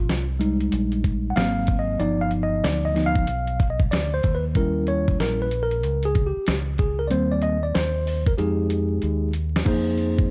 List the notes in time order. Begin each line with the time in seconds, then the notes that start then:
Already playing: F4
0.08 C2, snare, closed hi-hat
0.39 G3 G#3 D#4, closed hi-hat
0.60 closed hi-hat
0.72 A#1, closed hi-hat
0.92 closed hi-hat
1.04 kick, closed hi-hat
1.30 F#5
1.36 G#1 F#3 A#3 C4 F5, snare, closed hi-hat
1.67 kick, closed hi-hat
1.79 D#5
1.99 G1 F3 B3 D#4 D5, closed hi-hat
2.21 F5
2.31 closed hi-hat
2.43 D#5
2.64 D2 D5, snare, closed hi-hat
2.85 D#5
2.95 F3 B3 D#4, snare, closed hi-hat
3.06 F5
3.16 kick, closed hi-hat
3.27 B1, closed hi-hat
3.47 closed hi-hat
3.60 kick, closed hi-hat
3.70 D#5
3.80 kick
3.91 D2 D5, snare, closed hi-hat
4.14 C5
4.23 D#2, kick, closed hi-hat
4.35 B4
4.55 G3 C#4 E4 A#4, kick, closed hi-hat
4.87 C#5, closed hi-hat
5.08 kick
5.19 A#1 A#4, snare, closed hi-hat
5.42 B4
5.51 closed hi-hat
5.63 A#4
5.71 closed hi-hat
5.83 C#2, closed hi-hat
6.03 G#4, closed hi-hat
6.15 kick, closed hi-hat
6.26 G4
6.37 muted fingered electric bass stroke
6.47 C#2, snare, closed hi-hat
6.78 G#4, kick, closed hi-hat
6.99 A#4
7.08 G3 A#3 C4 C5 D5, closed hi-hat
7.12 D#2
7.32 D5
7.42 D#5, closed hi-hat
7.63 D5
7.75 D#2 C5, snare, closed hi-hat
8.07 open hi-hat
8.26 A#4, kick, closed hi-hat
8.38 F2 G#3 D#4 G4 G#4, closed hi-hat
8.70 closed hi-hat
9.02 D#2, closed hi-hat
9.33 closed hi-hat
9.56 snare
9.65 F2 A#3 D#4 G#4 C5, kick, closed hi-hat, crash
9.97 closed hi-hat
10.19 kick